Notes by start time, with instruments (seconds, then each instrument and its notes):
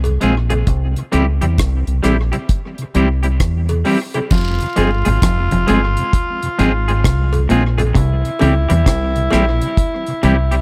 Already playing: fingered electric bass C2
0.04 tonewheel organ F2 C3, closed hi-hat, cowbell
0.21 fingered electric bass A#1, tonewheel organ F3 G#3 C4, clean electric guitar G#3 C4 F4 G#4, closed hi-hat
0.50 tonewheel organ F2 C3, clean electric guitar G#3 C4 F4 G#4, closed hi-hat, cowbell
0.67 fingered electric bass C2, kick, closed hi-hat
0.96 tonewheel organ C3, closed hi-hat
1.12 fingered electric bass C#2, tonewheel organ E3 G3 C4, clean electric guitar G3 C4 E4 G4, closed hi-hat, cowbell
1.41 fingered electric bass E2, tonewheel organ C3, clean electric guitar G3 C4 E4 G4, closed hi-hat
1.58 fingered electric bass C2, kick, cross-stick, closed hi-hat
1.87 fingered electric bass C2, tonewheel organ C3, closed hi-hat
2.03 fingered electric bass A#1, tonewheel organ E3 G3 C4, clean electric guitar G3 C4 E4 G4, cross-stick, closed hi-hat, cowbell
2.32 tonewheel organ C3, clean electric guitar G3 C4 E4 G4, closed hi-hat
2.49 kick, closed hi-hat
2.78 tonewheel organ C3, closed hi-hat
2.95 fingered electric bass C2, tonewheel organ E3 G3 C4, clean electric guitar G3 C4 E4 G4, closed hi-hat
3.23 clean electric guitar G3 C4 E4 G4, closed hi-hat
3.40 fingered electric bass E2, kick, cross-stick, closed hi-hat
3.69 tonewheel organ C3, closed hi-hat, cowbell
3.85 tonewheel organ E3 G3 C4, clean electric guitar G3 C4 E4 G4, open hi-hat
4.14 tonewheel organ C3, clean electric guitar G3 C4 E4 G4, closed hi-hat, cowbell
4.30 fingered electric bass F1, clean electric guitar F2, tenor saxophone F4, kick, crash, vibraslap
4.60 tonewheel organ F2 C3, closed hi-hat
4.76 fingered electric bass G1, clean electric guitar G2 G#3 C4 F4 G#4, tonewheel organ F3 G#3 C4, closed hi-hat, cowbell
5.05 fingered electric bass G#1, tonewheel organ F2 C3, clean electric guitar G#2 G#3 C4 F4 G#4, closed hi-hat
5.22 fingered electric bass F1, clean electric guitar F2, kick, cross-stick, closed hi-hat
5.51 fingered electric bass F1, tonewheel organ F2 C3, clean electric guitar F2, closed hi-hat
5.67 fingered electric bass G1, clean electric guitar G2 G#3 C4 F4 G#4, tonewheel organ F3 G#3 C4, closed hi-hat, cowbell
5.97 tonewheel organ F2 C3, closed hi-hat
6.13 kick, closed hi-hat
6.43 tonewheel organ F2 C3, closed hi-hat
6.59 fingered electric bass G#1, clean electric guitar G#2 G#3 C4 F4 G#4, tonewheel organ F3 G#3 C4, closed hi-hat
6.88 clean electric guitar G#3 C4 F4 G#4, closed hi-hat
7.04 fingered electric bass C2, clean electric guitar C3, kick, cross-stick, closed hi-hat
7.33 tonewheel organ F2 C3, closed hi-hat, cowbell
7.49 fingered electric bass A#1, clean electric guitar A#2 G#3 C4 F4 G#4, tonewheel organ F3 G#3 C4, closed hi-hat
7.78 tonewheel organ F2 C3, clean electric guitar G#3 C4 F4 G#4, closed hi-hat, cowbell
7.94 fingered electric bass C2, clean electric guitar C3, tenor saxophone E4, kick, closed hi-hat
8.25 tonewheel organ C3, closed hi-hat
8.39 fingered electric bass C#2, clean electric guitar C#3 G3 C4 E4 G4, tonewheel organ E3 G3 C4, closed hi-hat, cowbell
8.69 fingered electric bass E2, tonewheel organ C3, clean electric guitar E3 G3 C4 E4 G4, closed hi-hat
8.86 fingered electric bass C2, clean electric guitar C3, kick, cross-stick, closed hi-hat
9.16 tonewheel organ C3, closed hi-hat
9.31 fingered electric bass A#1, clean electric guitar A#2 G3 C4 E4 G4, tonewheel organ E3 G3, cross-stick, closed hi-hat, cowbell
9.35 tonewheel organ C4
9.61 tonewheel organ C3, closed hi-hat
9.77 kick, closed hi-hat
10.07 tonewheel organ C3, closed hi-hat
10.23 fingered electric bass C2, clean electric guitar C3 G3 C4 E4 G4, tonewheel organ E3 G3 C4, closed hi-hat
10.51 clean electric guitar G3 C4 E4 G4, closed hi-hat